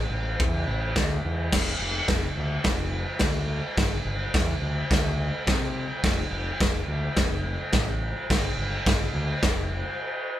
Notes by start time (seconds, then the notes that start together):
0.10 A1
0.40 E2, kick, crash
0.68 A1
0.96 D2, kick, snare, crash
1.25 E2
1.52 F1, kick, snare, crash
1.81 F1
2.08 F1, kick, snare, crash
2.38 D2
2.64 F1, kick, snare, crash
3.19 D2, kick, snare, crash
3.77 G1, kick, snare, crash
4.05 G1
4.34 E2, kick, snare, crash
4.62 D2
4.91 D2, kick, snare, crash
5.47 C3, kick, snare, crash
6.03 F1, kick, snare, crash
6.31 F1
6.60 F1, kick, snare, crash
6.88 D2
7.17 F1, kick, snare, crash
7.73 A1, kick, snare, crash
8.30 G1, kick, snare, crash
8.57 G1
8.86 G1, kick, snare, crash
9.14 D2
9.43 F1, kick, snare, crash